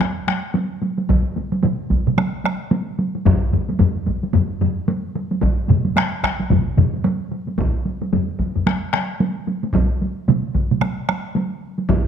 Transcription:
0.00 taiko rim, taiko high
0.27 taiko rim, taiko high
0.54 taiko high
0.82 taiko high
0.98 taiko high
1.09 taiko, taiko high
1.36 taiko high
1.52 taiko high
1.63 taiko mid, taiko high
1.90 taiko, taiko high
2.07 taiko mid, taiko high
2.18 taiko rim, taiko high
2.44 taiko rim, taiko high
2.71 taiko high
2.99 taiko high
3.15 taiko high
3.25 taiko, taiko low-mid, taiko high
3.53 taiko low-mid, taiko high
3.69 taiko high
3.79 taiko low-mid, taiko high
4.07 taiko, taiko high
4.23 taiko high
4.34 taiko low-mid, taiko high
4.61 taiko low-mid, taiko high
4.88 taiko high
5.15 taiko high
5.31 taiko high
5.42 taiko, taiko high
5.69 taiko low-mid, taiko mid, taiko high
5.85 taiko high
5.96 taiko rim, taiko high
6.23 taiko rim, taiko, taiko high
6.40 taiko high
6.50 taiko, taiko low-mid, taiko mid, taiko high
6.77 taiko low-mid, taiko mid, taiko high
6.93 taiko high
7.04 taiko high
7.31 taiko high
7.47 taiko high
7.58 taiko, taiko high
7.85 taiko high
8.02 taiko high
8.13 taiko low-mid, taiko high
8.39 taiko, taiko high
8.56 taiko low-mid, taiko high
8.67 taiko rim, taiko high
8.93 taiko rim, taiko high
9.20 taiko high
9.47 taiko high
9.64 taiko high
9.74 taiko, taiko high
10.02 taiko high
10.28 taiko mid, taiko high
10.55 taiko, taiko high
10.71 taiko mid, taiko high
10.82 taiko rim, taiko high
11.09 taiko rim, taiko high
11.35 taiko high
11.78 taiko high
11.89 taiko, taiko low-mid, taiko high

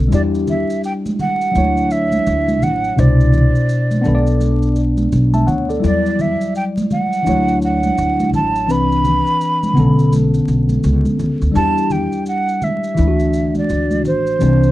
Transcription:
Already playing: D3 A4
0.00 B1
0.08 G3 D4, maracas
0.12 E2 E4 G4 D5
0.35 maracas
0.47 E5, low conga, maracas
0.70 maracas
0.84 G5, maracas
1.06 high conga, maracas
1.19 F#5, high conga, low conga, maracas
1.41 maracas
1.51 F#3 D4
1.55 D2 E4 C#5, high conga, maracas
1.77 maracas
1.91 E5, maracas
2.12 high conga, maracas
2.27 D2, maracas
2.48 high conga, maracas
2.62 A1 F#5, low conga, maracas
2.84 maracas
2.96 C2 B2 D4 E4 C5 D5, maracas
3.20 maracas
3.33 low conga, maracas
3.55 maracas
3.69 maracas
3.91 high conga, maracas
4.01 B3 D4, high conga, low conga, maracas
4.05 B1 A4 B4
4.15 D5
4.27 maracas
4.41 high conga, maracas
4.62 maracas
4.76 maracas
4.97 high conga, maracas
5.12 B1, maracas
5.34 E5 A5, high conga, maracas
5.47 D2 C#5 F#5, low conga, maracas
5.69 A4 D5, maracas
5.80 G3 E4
5.84 E2 F#3 D5, maracas
6.06 maracas
6.19 E5, low conga, maracas
6.41 maracas
6.55 G5, maracas
6.77 high conga, maracas
6.91 F#5, high conga, low conga, maracas
7.13 maracas
7.22 E3 D4
7.26 D2 F#3 E4 C#5, high conga, maracas
7.48 maracas
7.62 F#5, maracas
7.83 high conga, maracas
7.98 D2, maracas
8.20 high conga, maracas
8.33 A1 A5, low conga, maracas
8.56 maracas
8.67 C2 E3 C4 D4 B4, maracas
8.71 B5
8.92 maracas
9.05 low conga, maracas
9.27 maracas
9.41 maracas
9.63 high conga, maracas
9.73 B1 C#3 B3, high conga, low conga, maracas
9.77 D3 C#4 A4
9.99 maracas
10.13 high conga, maracas
10.34 maracas
10.48 B1, maracas
10.69 high conga, maracas
10.84 C#2, maracas
11.05 high conga, maracas
11.19 C#2, low conga, maracas
11.41 D2, maracas
11.52 E2 G3 D4 A5, maracas
11.56 E4 G4
11.78 maracas
11.90 G5, low conga, maracas
12.12 maracas
12.26 F#5, maracas
12.48 maracas
12.62 E5, high conga, low conga, maracas
12.84 maracas
12.94 D2 E3 E4, high conga, maracas
12.99 D4 E4
13.08 F#4
13.20 maracas
13.33 maracas
13.55 D5, high conga, maracas
13.69 D2, maracas
13.91 high conga, maracas
14.05 A1 C5, low conga, maracas
14.27 maracas
14.39 C2 E3 C4 D4 C5, maracas
14.63 maracas

